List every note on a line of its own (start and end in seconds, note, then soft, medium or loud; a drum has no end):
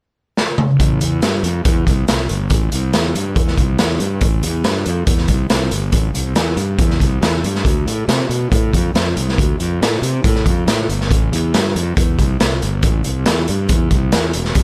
0.37 snare medium
0.58 mid tom medium
0.79 0.98 A1 medium
0.79 kick loud
0.79 closed hi-hat medium
1.01 1.20 E2 medium
1.01 closed hi-hat medium
1.22 1.41 G2 medium
1.22 snare loud
1.22 closed hi-hat medium
1.43 1.62 F2 medium
1.43 closed hi-hat medium
1.65 1.84 E2 medium
1.65 kick loud
1.65 closed hi-hat medium
1.87 2.05 C2 medium
1.87 kick medium
1.87 closed hi-hat medium
2.08 2.27 C2 medium
2.08 snare loud
2.08 closed hi-hat medium
2.29 2.48 G1 medium
2.29 closed hi-hat medium
2.50 2.69 A1 medium
2.50 kick loud
2.50 closed hi-hat medium
2.72 2.91 C2 medium
2.72 closed hi-hat medium
2.93 3.12 E2 medium
2.93 snare medium
2.93 closed hi-hat medium
3.15 3.34 G2 medium
3.15 closed hi-hat medium
3.36 3.55 E2 medium
3.36 kick loud
3.36 closed hi-hat medium
3.48 snare soft
3.58 3.76 C2 medium
3.58 kick medium
3.58 closed hi-hat medium
3.79 3.98 E2 medium
3.79 snare loud
3.79 closed hi-hat medium
3.99 4.18 G2 medium
3.99 closed hi-hat medium
4.21 4.41 A1 medium
4.21 kick loud
4.21 closed hi-hat medium
4.43 4.62 E2 medium
4.43 closed hi-hat medium
4.64 4.83 G2 medium
4.64 snare loud
4.64 closed hi-hat medium
4.86 5.05 F2 medium
4.86 closed hi-hat medium
5.07 5.26 E2 medium
5.07 kick loud
5.07 closed hi-hat medium
5.18 snare soft
5.28 5.47 C2 medium
5.28 kick medium
5.28 closed hi-hat medium
5.50 5.69 C2 medium
5.50 snare loud
5.50 closed hi-hat medium
5.71 5.91 G1 medium
5.71 closed hi-hat medium
5.92 6.12 A1 medium
5.92 kick loud
5.92 closed hi-hat medium
6.14 6.33 C2 medium
6.14 closed hi-hat medium
6.35 6.55 E2 medium
6.35 snare medium
6.35 closed hi-hat medium
6.56 6.76 G2 medium
6.56 closed hi-hat medium
6.79 6.98 E2 medium
6.79 kick loud
6.79 closed hi-hat medium
6.91 snare soft
7.00 7.20 C2 medium
7.00 kick medium
7.00 closed hi-hat medium
7.22 7.41 E2 medium
7.22 snare medium
7.22 closed hi-hat medium
7.43 7.63 G2 medium
7.43 closed hi-hat medium
7.55 snare soft
7.65 7.84 D2 medium
7.65 kick medium
7.65 closed hi-hat medium
7.86 8.05 A2 medium
7.86 closed hi-hat medium
8.08 8.27 C3 medium
8.08 snare medium
8.08 closed hi-hat medium
8.29 8.49 B2 medium
8.29 closed hi-hat medium
8.52 8.71 A2 medium
8.52 kick loud
8.52 closed hi-hat medium
8.73 8.92 F2 medium
8.73 kick medium
8.73 closed hi-hat medium
8.94 9.13 F2 medium
8.94 snare medium
8.94 closed hi-hat medium
9.16 9.35 C2 medium
9.16 closed hi-hat medium
9.29 snare soft
9.38 9.57 D2 medium
9.38 kick loud
9.38 closed hi-hat medium
9.60 9.78 F2 medium
9.60 closed hi-hat medium
9.81 10.00 A2 medium
9.81 snare loud
9.81 closed hi-hat medium
10.02 10.21 C3 medium
10.02 closed hi-hat medium
10.24 10.43 A2 medium
10.24 kick loud
10.24 closed hi-hat medium
10.36 snare soft
10.46 10.65 F2 medium
10.46 kick medium
10.46 closed hi-hat medium
10.67 10.86 A2 medium
10.67 snare medium
10.67 closed hi-hat medium
10.89 11.11 G1 medium
10.89 closed hi-hat medium
11.01 snare soft
11.11 11.30 A1 medium
11.11 kick loud
11.11 closed hi-hat medium
11.32 11.51 E2 medium
11.32 closed hi-hat medium
11.54 11.73 G2 medium
11.54 snare medium
11.54 closed hi-hat medium
11.75 11.94 F2 medium
11.75 closed hi-hat medium
11.97 12.16 E2 medium
11.97 kick loud
11.97 closed hi-hat medium
12.19 12.37 C2 medium
12.19 kick medium
12.19 closed hi-hat medium
12.40 12.60 C2 medium
12.40 snare loud
12.40 closed hi-hat medium
12.62 12.81 G1 medium
12.62 closed hi-hat medium
12.83 13.02 A1 medium
12.83 kick loud
12.83 closed hi-hat medium
13.04 13.24 C2 medium
13.04 closed hi-hat medium
13.26 13.46 E2 medium
13.26 snare loud
13.26 closed hi-hat medium
13.48 13.67 G2 medium
13.48 closed hi-hat medium
13.69 13.88 E2 medium
13.69 kick loud
13.69 closed hi-hat medium
13.91 14.10 C2 medium
13.91 kick medium
13.91 closed hi-hat medium
14.12 14.32 E2 medium
14.12 snare loud
14.12 closed hi-hat medium
14.33 14.54 E1 medium
14.33 closed hi-hat medium
14.45 snare soft
14.55 14.63 F1 medium
14.55 kick loud
14.55 closed hi-hat medium